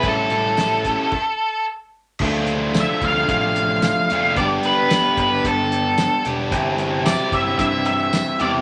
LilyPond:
<<
  \new Staff \with { instrumentName = "Lead electric guitar" } { \time 4/4 \key c \major \tempo 4 = 111 a'2. r4 | \key d \dorian r4 e''8 f''8 f''2 | d''8 b'4 b'8 a'4. r8 | r4 d''8 e''8 e''8 e''4 d''8 | }
  \new Staff \with { instrumentName = "Overdriven electric guitar" } { \time 4/4 \key c \major <g cis' e' a'>8 <g cis' e' a'>8 <g cis' e' a'>8 <g cis' e' a'>8 r2 | \key d \dorian <f a d' f'>2.~ <f a d' f'>8 <f a d' f'>8 | <b d' g'>2.~ <b d' g'>8 <b d' g'>8 | <e c' e' g'>2.~ <e c' e' g'>8 <e c' e' g'>8 | }
  \new Staff \with { instrumentName = "Picked electric bass" } { \clef bass \time 4/4 \key c \major a,,8 a,,4. r2 | \key d \dorian d,4. d,8 a,,4. f,8 | g,,8 r4 g,,8 g,,4. e,,8 | g,,4. g,,8 g,4. e,8 | }
  \new DrumStaff \with { instrumentName = "Drums" } \drummode { \time 4/4 <hh bd>8 hh8 <hh sn tamb>8 <hh bd>8 <cymc bd>4 r4 | <cymc bd>8 hh8 <hh sn tamb>8 <hh bd>8 <hh bd>8 hh8 <hh sn tamb>8 hh8 | <hh bd>8 hh8 <hh sn tamb>8 <hh bd>8 <hh bd>8 hh8 <hh sn tamb>8 hh8 | <hh bd>8 hh8 <hh sn tamb>8 <hh bd>8 <hh bd>8 hh8 <hh sn tamb>8 hh8 | }
>>